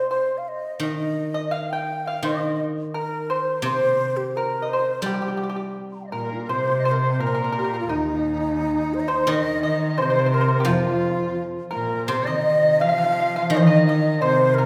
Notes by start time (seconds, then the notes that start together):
0.10 C5
0.38 F5
0.48 D#5
0.80 D#3 D#5
1.34 D#5
1.51 F5
1.70 G5
2.06 F5
2.23 D#3 D#5
2.94 A#4
3.30 C5
3.62 C3 C5
4.17 G4
4.36 A#4
4.62 D#5
4.68 C5
4.73 C5
5.02 G3 G4
5.06 G4
5.14 G4
5.22 G4
5.28 G4
5.37 G4
5.43 G4
5.49 G4
5.56 G4
5.92 A#5 C6
6.01 F5 G5
6.07 C5 D#5
6.12 A#2 A#4
6.32 D#4 F4
6.42 G4 A#4
6.49 C3 C5
6.79 D#5
6.85 C5
6.91 A#4
6.99 C5
7.11 C5
7.19 A#2 A#4
7.27 A#4
7.35 A#4
7.44 A#4
7.52 A#4
7.57 G4 A#4
7.64 A#4
7.74 A#4
7.80 F4
7.89 D#2 D#4
8.94 C5
9.00 D#5
9.08 C5
9.27 D#3 D#5
9.63 D#5
9.98 C3 C5
10.02 C5
10.10 C5
10.19 C5
10.26 C5
10.33 A#4 C5
10.41 C5
10.48 C5
10.60 G4
10.65 F2 F3 F4
10.74 D#4
10.79 F4
11.71 A#2 A#4
12.06 C3 C5
12.10 C3
12.26 D#3 D#5
12.79 F3 F5
12.89 F5
12.98 F5
13.04 F5
13.12 F5
13.20 F5
13.36 F5
13.50 D#3 D#5
13.55 C5 D#5
13.63 D#5
13.86 D#5
14.21 C3 C5
14.54 A#4